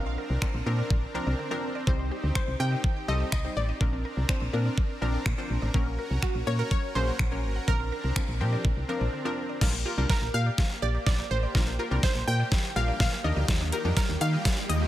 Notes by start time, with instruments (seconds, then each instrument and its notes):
Already playing: fm bass A#1, synth stab F3 C4 D4 A#4, supersaw synth C4 D4 A#4, synth pluck F5
0.06 synth arpeggio sound C4
0.18 synth arpeggio sound A#4
0.30 fm bass C2
0.42 synth arpeggio sound D3, synth stab F3 C4 D4 A#4, finger snap, kick
0.54 fm bass A#1, synth arpeggio sound C4
0.66 fm bass A#2, synth stab F3 C4 D4 A#4, synth arpeggio sound A#4
0.78 synth arpeggio sound D5
0.90 fm bass A#1, synth arpeggio sound D3, kick
1.14 fm bass C2, synth stab F3 C4 D4 A#4, synth arpeggio sound A#4
1.27 fm bass C2, synth arpeggio sound D5
1.39 synth arpeggio sound D3
1.51 synth stab F3 C4 D4 A#4, synth arpeggio sound C4
1.75 synth arpeggio sound D5
1.87 fm bass C2, synth arpeggio sound D#3, synth stab G3 C4 D#4 C5, supersaw synth D#4 G4, kick
1.99 synth arpeggio sound C4
2.11 synth arpeggio sound G4
2.24 fm bass D2
2.35 synth arpeggio sound D#3, synth stab G3 C4 D#4 C5, synth pluck C5, finger snap, kick
2.48 fm bass C2, synth arpeggio sound C4
2.60 fm bass C3, synth stab G3 C4 D#4 A#4, synth arpeggio sound G4, synth pluck G5
2.72 synth arpeggio sound D#5
2.84 synth arpeggio sound D#3, kick
3.08 fm bass C2, synth stab G3 C4 D#4 A4, synth arpeggio sound G4, synth pluck D#5
3.20 synth arpeggio sound D#5
3.32 fm bass C2, synth arpeggio sound D#3, synth pluck D#5, finger snap, kick
3.44 synth stab G3 C4 D#4 C5, synth arpeggio sound C4
3.57 fm bass A1, synth pluck D5
3.69 synth arpeggio sound D#5
3.81 fm bass A#1, synth arpeggio sound D3, synth stab F3 C4 D4 A#4, supersaw synth C4 D4 A#4, kick
3.93 synth arpeggio sound C4
4.05 synth arpeggio sound A#4
4.17 fm bass C2
4.29 synth arpeggio sound D3, synth stab F3 C4 D4 C5, finger snap, kick
4.41 fm bass A#1, synth arpeggio sound C4
4.53 fm bass A#2, synth stab F3 C4 D4 A#4, synth arpeggio sound A#4
4.65 synth arpeggio sound D5
4.77 synth arpeggio sound D3, kick
5.01 fm bass A#1, synth stab F3 C4 D4 A#4, synth arpeggio sound A#4
5.14 synth arpeggio sound D5
5.26 fm bass A#2, synth arpeggio sound D3, finger snap, kick
5.38 synth stab F3 C4 D4 C5, synth arpeggio sound C4
5.50 fm bass A#1
5.62 fm bass A1, synth arpeggio sound D5
5.74 fm bass A#1, synth stab F#3 A#3 C#4 A#4, synth arpeggio sound F#3, supersaw synth C#4 F#4, kick
5.86 synth arpeggio sound C#4
5.99 synth arpeggio sound A#4
6.11 fm bass C2
6.22 synth stab F#3 A#3 C#4 A#4, synth arpeggio sound F#3, synth pluck F#4, finger snap, kick
6.35 fm bass A#1, synth arpeggio sound C#4
6.47 fm bass A#2, synth stab F#3 A#3 C#4 C#5, synth arpeggio sound A#4, synth pluck C#5
6.59 synth pluck A#4, synth arpeggio sound F#5
6.71 synth arpeggio sound F#3, synth pluck C#5, kick
6.95 fm bass A#1, synth stab F#3 A#3 C#4 G#4, synth arpeggio sound A#4, synth pluck C5
7.07 synth arpeggio sound F#5
7.19 fm bass A#1, synth arpeggio sound F#3, finger snap, kick
7.31 synth stab F#3 A#3 C#4 A#4, synth arpeggio sound C#4
7.44 fm bass G#1
7.56 synth arpeggio sound F#5
7.68 fm bass A#1, synth arpeggio sound D3, synth stab F3 C4 D4 A#4, supersaw synth C4 D4, synth pluck A#4, kick
7.80 synth arpeggio sound C4
7.92 synth arpeggio sound A#4
8.04 fm bass C2
8.16 synth arpeggio sound D3, synth stab F3 C4 D4 A#4, finger snap, kick
8.28 fm bass A#1, synth arpeggio sound C4
8.40 fm bass A#2, synth stab F3 C4 D4 G4, synth arpeggio sound A#4
8.53 synth arpeggio sound D5
8.65 fm bass A#1, synth arpeggio sound D3, kick
8.77 fm bass C2
8.89 synth stab F3 C4 D4 A#4, synth arpeggio sound A#4
9.01 fm bass A#1, synth arpeggio sound D5
9.13 synth arpeggio sound D3
9.25 synth stab F3 C4 D4 A#4, synth arpeggio sound C4
9.49 synth arpeggio sound D5
9.61 fm bass A#1, synth arpeggio sound D3, synth stab G3 D4 F4 A#4, supersaw synth A#3 G4, kick, snare, crash, riser
9.74 synth arpeggio sound A#3
9.85 synth stab F4 A#4, synth arpeggio sound G4
9.98 fm bass C2, synth stab G3 D4 F4 A#4
10.10 synth arpeggio sound D3, synth pluck A#4, kick, snare
10.22 fm bass A#1, synth arpeggio sound A#3
10.34 fm bass A#2, synth arpeggio sound G4, synth pluck F5
10.46 synth arpeggio sound D5
10.58 synth arpeggio sound D3, kick, snare
10.82 fm bass A#1, synth arpeggio sound G4, synth pluck D5
10.94 synth arpeggio sound D5
11.06 fm bass A#1, synth arpeggio sound D3, synth pluck D5, kick, snare
11.19 synth arpeggio sound A#3
11.31 fm bass A1, synth pluck C5
11.43 synth arpeggio sound D5
11.55 fm bass A#1, synth arpeggio sound D3, synth stab G3 D4 F4 A#4, kick, snare
11.67 synth arpeggio sound A#3
11.79 synth stab F4 A#4, synth arpeggio sound G4
11.91 fm bass C2, synth stab G3 D4 F4 A#4
12.03 synth arpeggio sound D3, synth pluck C5, kick, snare
12.15 fm bass A#1, synth arpeggio sound A#3
12.27 fm bass A#2, synth arpeggio sound G4, synth pluck G5
12.40 synth arpeggio sound D5
12.52 synth arpeggio sound D3, kick, snare
12.76 fm bass A#1, synth stab G3 D4 F4 A#4, synth arpeggio sound G4, synth pluck F5
12.88 synth arpeggio sound D5
13.00 fm bass A#2, synth arpeggio sound D3, synth pluck F5, kick, snare
13.12 synth arpeggio sound A#3
13.24 fm bass D#2, supersaw synth D#3 F4, synth stab G3 D4 D#4 A#4, synth pluck D#5
13.36 fm bass D2, synth arpeggio sound D#5
13.48 fm bass D#2, synth arpeggio sound D#3, kick, snare, closed hi-hat
13.61 synth arpeggio sound D4
13.72 synth stab D#4 A#4, synth arpeggio sound G4, closed hi-hat
13.85 fm bass F2, synth stab G3 D4 D#4 A#4
13.97 synth arpeggio sound D#3, synth pluck A#4, kick, snare, closed hi-hat
14.09 fm bass D#2, synth arpeggio sound D4
14.21 fm bass D#3, synth arpeggio sound G4, synth pluck F5, closed hi-hat
14.33 synth arpeggio sound D#5
14.45 synth arpeggio sound D#3, kick, snare, closed hi-hat
14.69 fm bass D#2, synth arpeggio sound G4, synth pluck D#5, closed hi-hat
14.82 synth arpeggio sound D#5